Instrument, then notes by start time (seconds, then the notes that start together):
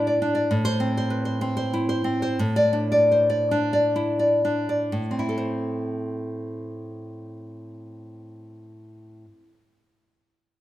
nylon-string guitar
Already playing: A2 D4 E4 C5
0.07 D5
0.22 D4
0.35 D5
0.51 A2
0.65 C5
0.80 C4
0.97 C5
1.10 B4
1.25 C5
1.41 C4
1.57 C5
1.73 E4
1.89 C5
2.04 C4
2.22 C5
2.39 A2
2.56 D5
2.73 D4
2.92 D5
3.12 C5
3.30 D5
3.51 D4
3.73 D5
3.96 E4
4.19 D5
4.45 D4
4.69 D5
4.92 A2
5.11 C4
5.19 E4
5.29 A4
5.38 C5